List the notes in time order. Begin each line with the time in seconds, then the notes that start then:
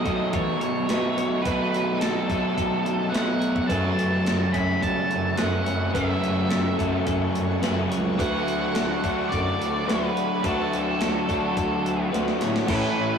Already playing: B2 F#3 A3 D#4 F#4 A4 D#5
0.05 B2 F#3 A3 D#4 A4, kick, open hi-hat
0.09 B2
0.33 E3 A4 C#5, kick, open hi-hat
0.61 B2 C#5, open hi-hat
0.89 B2 F#3 A3 D#4 A4 B4, snare, open hi-hat
1.17 B2 C#5, open hi-hat
1.42 B2 B4, open hi-hat
1.46 B2 F#3 A3 D#4 F#4 A4, kick
1.72 B2, open hi-hat
2.00 B2 A4, snare, open hi-hat
2.28 B2 F#3 A3 D#4 A4, kick, open hi-hat
2.57 B2 A4, kick, open hi-hat
2.85 B2, open hi-hat
3.10 B2 F#3 A3 B4 F#5
3.14 B2 D#4 A4, snare, open hi-hat
3.40 C#5, open hi-hat
3.56 kick
3.67 F#2 C#3 F#3 A3 C#4 A4 B4 F#5 A5 C#6, kick, open hi-hat
3.71 F#4 A4 E5
3.99 F#2, open hi-hat
4.25 F#2 A4, snare, open hi-hat
4.52 F#2 C#3 F#3 A3 C#4 A4 B5, kick, open hi-hat
4.81 B2 A4 A5, kick, open hi-hat
5.11 F#2, open hi-hat
5.36 F#2 C#3 F#3 A3 C#4 A4 B4 F#5, snare, open hi-hat
5.40 F#2
5.66 F#2 C#5, open hi-hat
5.93 F#2 C#3 F#3 A3 C#4 A4 B4 E5, kick, open hi-hat
5.97 F#4
6.24 F#2, open hi-hat
6.50 F#2 A4, snare, open hi-hat
6.77 F#2 C#3 F#3 A3 C#4 A4, kick, open hi-hat
7.06 F#2 A4, kick, open hi-hat
7.35 F#2, open hi-hat
7.61 F#2 C#3 F#3 A3 C#4 A4 B4, snare, open hi-hat
7.91 C#2 C#5, open hi-hat
8.18 D2 D3 F#3 A3 D4 F#4 B4 D5 F#5, kick, open hi-hat
8.48 D2, open hi-hat
8.74 D2 A4, snare, open hi-hat
9.03 D2 D3 F#3 A3 D4 F#4 A4, kick, open hi-hat
9.29 F#2 A4 D5, kick, open hi-hat
9.60 D2, open hi-hat
9.85 D2 D3 F#3 A3 D4 F#4 B4, open hi-hat
9.89 B4, snare
10.15 C#5, open hi-hat
10.43 D2 D3 F#3 A3 D4 F#4 A4 B4, kick, open hi-hat
10.72 D2, open hi-hat
10.99 D2 A4, snare, open hi-hat
11.28 D2 F#3 A3 D4 F#4 A4, kick, open hi-hat
11.32 D3
11.57 D2 A4, kick, open hi-hat
11.84 D2, open hi-hat
12.11 D2 D3 F#3 A3 D4 F#4 B4, open hi-hat
12.15 snare
12.28 snare
12.41 A2 C#5, snare, open hi-hat
12.56 snare
12.66 A2 E3 A3 C#4 A4 B4 E5 G#5 C#6, kick, crash
12.70 E4 A4
12.97 A2